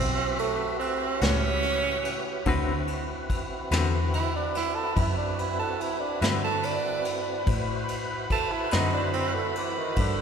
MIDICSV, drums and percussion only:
0, 0, Header, 1, 2, 480
1, 0, Start_track
1, 0, Tempo, 833797
1, 1422, Time_signature, 12, 3, 24, 8
1, 5881, End_track
2, 0, Start_track
2, 0, Title_t, "Drums"
2, 223, Note_on_c, 9, 51, 57
2, 281, Note_off_c, 9, 51, 0
2, 463, Note_on_c, 9, 51, 51
2, 521, Note_off_c, 9, 51, 0
2, 698, Note_on_c, 9, 51, 78
2, 709, Note_on_c, 9, 38, 102
2, 755, Note_off_c, 9, 51, 0
2, 767, Note_off_c, 9, 38, 0
2, 936, Note_on_c, 9, 51, 60
2, 994, Note_off_c, 9, 51, 0
2, 1179, Note_on_c, 9, 51, 60
2, 1237, Note_off_c, 9, 51, 0
2, 1414, Note_on_c, 9, 51, 71
2, 1417, Note_on_c, 9, 36, 101
2, 1472, Note_off_c, 9, 51, 0
2, 1475, Note_off_c, 9, 36, 0
2, 1656, Note_on_c, 9, 51, 55
2, 1713, Note_off_c, 9, 51, 0
2, 1898, Note_on_c, 9, 36, 76
2, 1898, Note_on_c, 9, 51, 61
2, 1956, Note_off_c, 9, 36, 0
2, 1956, Note_off_c, 9, 51, 0
2, 2138, Note_on_c, 9, 51, 78
2, 2149, Note_on_c, 9, 38, 115
2, 2195, Note_off_c, 9, 51, 0
2, 2207, Note_off_c, 9, 38, 0
2, 2380, Note_on_c, 9, 51, 56
2, 2438, Note_off_c, 9, 51, 0
2, 2618, Note_on_c, 9, 51, 59
2, 2630, Note_on_c, 9, 38, 33
2, 2676, Note_off_c, 9, 51, 0
2, 2688, Note_off_c, 9, 38, 0
2, 2858, Note_on_c, 9, 51, 75
2, 2859, Note_on_c, 9, 36, 104
2, 2915, Note_off_c, 9, 51, 0
2, 2916, Note_off_c, 9, 36, 0
2, 3101, Note_on_c, 9, 51, 60
2, 3159, Note_off_c, 9, 51, 0
2, 3342, Note_on_c, 9, 51, 59
2, 3400, Note_off_c, 9, 51, 0
2, 3579, Note_on_c, 9, 51, 80
2, 3591, Note_on_c, 9, 38, 103
2, 3637, Note_off_c, 9, 51, 0
2, 3648, Note_off_c, 9, 38, 0
2, 3819, Note_on_c, 9, 51, 63
2, 3877, Note_off_c, 9, 51, 0
2, 4058, Note_on_c, 9, 51, 64
2, 4115, Note_off_c, 9, 51, 0
2, 4298, Note_on_c, 9, 51, 79
2, 4301, Note_on_c, 9, 36, 103
2, 4355, Note_off_c, 9, 51, 0
2, 4358, Note_off_c, 9, 36, 0
2, 4539, Note_on_c, 9, 51, 62
2, 4597, Note_off_c, 9, 51, 0
2, 4779, Note_on_c, 9, 51, 61
2, 4780, Note_on_c, 9, 36, 79
2, 4836, Note_off_c, 9, 51, 0
2, 4838, Note_off_c, 9, 36, 0
2, 5014, Note_on_c, 9, 51, 80
2, 5026, Note_on_c, 9, 38, 109
2, 5072, Note_off_c, 9, 51, 0
2, 5083, Note_off_c, 9, 38, 0
2, 5258, Note_on_c, 9, 51, 54
2, 5316, Note_off_c, 9, 51, 0
2, 5499, Note_on_c, 9, 51, 58
2, 5557, Note_off_c, 9, 51, 0
2, 5736, Note_on_c, 9, 51, 81
2, 5739, Note_on_c, 9, 36, 110
2, 5793, Note_off_c, 9, 51, 0
2, 5797, Note_off_c, 9, 36, 0
2, 5881, End_track
0, 0, End_of_file